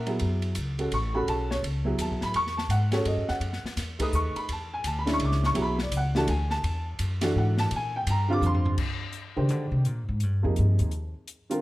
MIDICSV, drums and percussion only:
0, 0, Header, 1, 2, 480
1, 0, Start_track
1, 0, Tempo, 357356
1, 275, Time_signature, 3, 2, 24, 8
1, 15600, End_track
2, 0, Start_track
2, 0, Title_t, "Drums"
2, 87, Note_on_c, 9, 51, 48
2, 221, Note_off_c, 9, 51, 0
2, 260, Note_on_c, 9, 51, 59
2, 395, Note_off_c, 9, 51, 0
2, 565, Note_on_c, 9, 51, 48
2, 700, Note_off_c, 9, 51, 0
2, 737, Note_on_c, 9, 44, 59
2, 737, Note_on_c, 9, 51, 65
2, 871, Note_off_c, 9, 44, 0
2, 871, Note_off_c, 9, 51, 0
2, 1057, Note_on_c, 9, 51, 46
2, 1191, Note_off_c, 9, 51, 0
2, 1230, Note_on_c, 9, 51, 60
2, 1365, Note_off_c, 9, 51, 0
2, 1717, Note_on_c, 9, 51, 56
2, 1851, Note_off_c, 9, 51, 0
2, 2029, Note_on_c, 9, 38, 46
2, 2163, Note_off_c, 9, 38, 0
2, 2201, Note_on_c, 9, 51, 61
2, 2336, Note_off_c, 9, 51, 0
2, 2666, Note_on_c, 9, 44, 58
2, 2666, Note_on_c, 9, 51, 66
2, 2800, Note_off_c, 9, 44, 0
2, 2800, Note_off_c, 9, 51, 0
2, 2972, Note_on_c, 9, 38, 37
2, 3106, Note_off_c, 9, 38, 0
2, 3143, Note_on_c, 9, 51, 54
2, 3277, Note_off_c, 9, 51, 0
2, 3315, Note_on_c, 9, 38, 28
2, 3449, Note_off_c, 9, 38, 0
2, 3471, Note_on_c, 9, 38, 46
2, 3605, Note_off_c, 9, 38, 0
2, 3623, Note_on_c, 9, 44, 52
2, 3623, Note_on_c, 9, 51, 66
2, 3757, Note_off_c, 9, 44, 0
2, 3757, Note_off_c, 9, 51, 0
2, 3917, Note_on_c, 9, 51, 49
2, 3921, Note_on_c, 9, 38, 51
2, 4052, Note_off_c, 9, 51, 0
2, 4056, Note_off_c, 9, 38, 0
2, 4100, Note_on_c, 9, 51, 59
2, 4234, Note_off_c, 9, 51, 0
2, 4410, Note_on_c, 9, 38, 34
2, 4544, Note_off_c, 9, 38, 0
2, 4580, Note_on_c, 9, 51, 56
2, 4714, Note_off_c, 9, 51, 0
2, 4740, Note_on_c, 9, 38, 30
2, 4874, Note_off_c, 9, 38, 0
2, 4910, Note_on_c, 9, 38, 43
2, 5045, Note_off_c, 9, 38, 0
2, 5062, Note_on_c, 9, 44, 60
2, 5062, Note_on_c, 9, 51, 66
2, 5066, Note_on_c, 9, 38, 34
2, 5197, Note_off_c, 9, 44, 0
2, 5197, Note_off_c, 9, 51, 0
2, 5201, Note_off_c, 9, 38, 0
2, 5367, Note_on_c, 9, 51, 73
2, 5370, Note_on_c, 9, 36, 56
2, 5501, Note_off_c, 9, 51, 0
2, 5504, Note_off_c, 9, 36, 0
2, 5544, Note_on_c, 9, 44, 64
2, 5678, Note_off_c, 9, 44, 0
2, 5857, Note_on_c, 9, 51, 45
2, 5991, Note_off_c, 9, 51, 0
2, 6026, Note_on_c, 9, 51, 61
2, 6161, Note_off_c, 9, 51, 0
2, 6501, Note_on_c, 9, 44, 57
2, 6501, Note_on_c, 9, 51, 66
2, 6635, Note_off_c, 9, 44, 0
2, 6635, Note_off_c, 9, 51, 0
2, 6812, Note_on_c, 9, 51, 50
2, 6816, Note_on_c, 9, 38, 53
2, 6946, Note_off_c, 9, 51, 0
2, 6950, Note_off_c, 9, 38, 0
2, 6978, Note_on_c, 9, 51, 67
2, 7113, Note_off_c, 9, 51, 0
2, 7142, Note_on_c, 9, 38, 29
2, 7276, Note_off_c, 9, 38, 0
2, 7303, Note_on_c, 9, 38, 41
2, 7437, Note_off_c, 9, 38, 0
2, 7454, Note_on_c, 9, 51, 64
2, 7589, Note_off_c, 9, 51, 0
2, 7773, Note_on_c, 9, 38, 53
2, 7907, Note_off_c, 9, 38, 0
2, 7947, Note_on_c, 9, 44, 56
2, 7947, Note_on_c, 9, 51, 72
2, 8081, Note_off_c, 9, 44, 0
2, 8081, Note_off_c, 9, 51, 0
2, 8260, Note_on_c, 9, 38, 66
2, 8394, Note_off_c, 9, 38, 0
2, 8429, Note_on_c, 9, 51, 64
2, 8563, Note_off_c, 9, 51, 0
2, 8735, Note_on_c, 9, 38, 38
2, 8869, Note_off_c, 9, 38, 0
2, 8917, Note_on_c, 9, 51, 62
2, 9051, Note_off_c, 9, 51, 0
2, 9386, Note_on_c, 9, 44, 65
2, 9386, Note_on_c, 9, 51, 68
2, 9520, Note_off_c, 9, 44, 0
2, 9520, Note_off_c, 9, 51, 0
2, 9688, Note_on_c, 9, 51, 74
2, 9692, Note_on_c, 9, 38, 52
2, 9822, Note_off_c, 9, 51, 0
2, 9826, Note_off_c, 9, 38, 0
2, 10176, Note_on_c, 9, 38, 55
2, 10310, Note_off_c, 9, 38, 0
2, 10353, Note_on_c, 9, 51, 59
2, 10487, Note_off_c, 9, 51, 0
2, 10836, Note_on_c, 9, 44, 58
2, 10836, Note_on_c, 9, 51, 72
2, 10970, Note_off_c, 9, 44, 0
2, 10970, Note_off_c, 9, 51, 0
2, 11311, Note_on_c, 9, 44, 51
2, 11315, Note_on_c, 9, 47, 50
2, 11445, Note_off_c, 9, 44, 0
2, 11449, Note_off_c, 9, 47, 0
2, 11479, Note_on_c, 9, 43, 63
2, 11613, Note_off_c, 9, 43, 0
2, 11627, Note_on_c, 9, 43, 79
2, 11761, Note_off_c, 9, 43, 0
2, 11788, Note_on_c, 9, 49, 74
2, 11790, Note_on_c, 9, 36, 69
2, 11922, Note_off_c, 9, 49, 0
2, 11924, Note_off_c, 9, 36, 0
2, 12258, Note_on_c, 9, 42, 40
2, 12392, Note_off_c, 9, 42, 0
2, 12744, Note_on_c, 9, 42, 37
2, 12879, Note_off_c, 9, 42, 0
2, 13228, Note_on_c, 9, 42, 39
2, 13363, Note_off_c, 9, 42, 0
2, 13702, Note_on_c, 9, 42, 43
2, 13836, Note_off_c, 9, 42, 0
2, 14186, Note_on_c, 9, 42, 42
2, 14321, Note_off_c, 9, 42, 0
2, 14491, Note_on_c, 9, 42, 40
2, 14625, Note_off_c, 9, 42, 0
2, 14659, Note_on_c, 9, 42, 37
2, 14793, Note_off_c, 9, 42, 0
2, 15145, Note_on_c, 9, 42, 48
2, 15279, Note_off_c, 9, 42, 0
2, 15456, Note_on_c, 9, 42, 44
2, 15591, Note_off_c, 9, 42, 0
2, 15600, End_track
0, 0, End_of_file